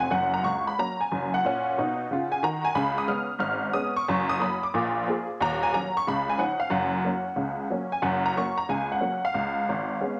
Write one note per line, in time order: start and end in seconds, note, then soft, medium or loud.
0.00 0.11 G#5 medium
0.10 0.38 F#1 medium
0.10 0.37 F#2 medium
0.10 0.33 F#5 medium
0.34 0.45 A#5 medium
0.43 0.70 C#2 medium
0.43 0.66 C#6 medium
0.67 0.78 B5 medium
0.78 0.97 F#3 soft
0.78 0.96 A#3 soft
0.78 0.97 C#4 soft
0.78 1.01 A#5 medium
1.01 1.33 G#5 medium
1.12 1.38 F#1 medium
1.12 1.38 F#2 medium
1.34 2.32 F#5 medium
1.44 1.71 A#2 medium
1.44 1.72 C#4 medium
1.78 2.04 B2 medium
1.78 2.04 D#4 medium
2.11 2.37 C#3 medium
2.11 2.38 F4 medium
2.32 2.43 G#5 medium
2.43 2.69 D#3 medium
2.43 2.70 F#4 medium
2.43 2.65 A#5 medium
2.65 2.76 G#5 loud
2.75 3.03 C#2 medium
2.75 3.04 C#3 medium
2.75 2.97 B5 loud
2.98 3.09 D#6 medium
3.08 3.26 G#3 medium
3.08 3.26 B3 medium
3.08 3.27 C#4 soft
3.08 3.39 F6 medium
3.39 3.68 G#1 medium
3.39 3.68 G#2 medium
3.39 3.74 F6 loud
3.73 3.92 G#3 soft
3.73 3.92 B3 medium
3.73 3.93 C#4 medium
3.73 3.96 D#6 loud
3.97 4.30 C#6 medium
4.08 4.36 F#1 medium
4.08 4.36 F#2 loud
4.29 4.41 D#6 loud
4.40 4.58 F#3 medium
4.40 4.59 A#3 medium
4.40 4.60 C#4 medium
4.40 4.63 B5 medium
4.63 5.07 D6 medium
4.74 5.02 A#1 medium
4.74 5.02 A#2 medium
5.08 5.26 F3 soft
5.08 5.26 A#3 medium
5.08 5.27 G#4 medium
5.40 5.69 D#1 medium
5.40 5.68 D#2 loud
5.40 5.63 A#5 loud
5.63 5.74 G#5 loud
5.74 5.92 F#3 soft
5.74 5.92 C#4 medium
5.74 5.92 F#4 medium
5.74 5.95 A#5 loud
5.97 6.07 C#6 loud
6.07 6.35 C#2 medium
6.07 6.35 C#3 medium
6.07 6.29 B5 loud
6.29 6.40 G#5 medium
6.37 6.56 F3 soft
6.37 6.57 C#4 soft
6.37 6.58 D#4 medium
6.37 6.61 F#5 medium
6.60 6.71 F5 medium
6.70 6.99 F#1 medium
6.70 6.99 F#2 medium
6.70 7.70 F#5 medium
7.05 7.23 F#3 soft
7.05 7.23 A#3 soft
7.05 7.24 C#4 soft
7.36 7.65 C#2 medium
7.36 7.65 C#3 medium
7.70 7.89 F#3 soft
7.70 7.89 A#3 soft
7.70 7.90 C#4 medium
7.92 8.04 G#5 medium
8.02 8.31 F#1 medium
8.02 8.31 F#2 loud
8.02 8.25 F#5 medium
8.26 8.37 A#5 medium
8.36 8.55 F#3 soft
8.36 8.55 A#3 medium
8.36 8.55 C#4 soft
8.36 8.59 C#6 medium
8.57 8.69 A#5 medium
8.69 8.97 C#2 medium
8.69 8.97 C#3 medium
8.69 8.92 G#5 medium
8.92 9.24 F#5 medium
9.01 9.20 F#3 soft
9.01 9.20 A#3 soft
9.01 9.19 C#4 soft
9.25 10.20 F5 medium
9.34 9.62 C#2 medium
9.69 9.96 G#1 medium
10.01 10.20 G#3 soft
10.01 10.20 B3 soft
10.01 10.19 C#4 soft